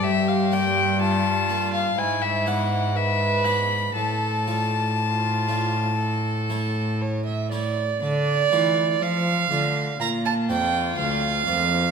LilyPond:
<<
  \new Staff \with { instrumentName = "Violin" } { \time 4/4 \key d \minor \tempo 4 = 61 e''16 f''16 g''8 a''8. f''16 gis''16 e''16 fis''8 e''8 b''8 | a''2. r4 | r2 f'2 | }
  \new Staff \with { instrumentName = "Violin" } { \time 4/4 \key d \minor g'4 f'4 e'4 b'4 | a'4 f'4 a'4 cis''16 e''16 d''8 | d''4 f''4 bes''16 a''16 g''8 f''4 | }
  \new Staff \with { instrumentName = "Harpsichord" } { \time 4/4 \key d \minor r8 <bes d' d''>4 <bes d' d''>8 r8 <b e' d''>4 <b e' d''>8 | r8 <a f' d''>4 <a f' d''>8 r8 <a e' cis''>4 <a e' cis''>8 | r8 <a f' d''>4 <a f' d''>8 r8 <bes d' d''>4 <bes d' d''>8 | }
  \new Staff \with { instrumentName = "Harpsichord" } { \clef bass \time 4/4 \key d \minor g,2 gis,2 | a,1 | d8 e8 f8 d8 bes,8 f,8 d,8 f,8 | }
  \new Staff \with { instrumentName = "Cello" } { \clef bass \time 4/4 \key d \minor g,2 gis,2 | a,1 | d8 e8 f8 d8 bes,8 f,8 d,8 f,8 | }
>>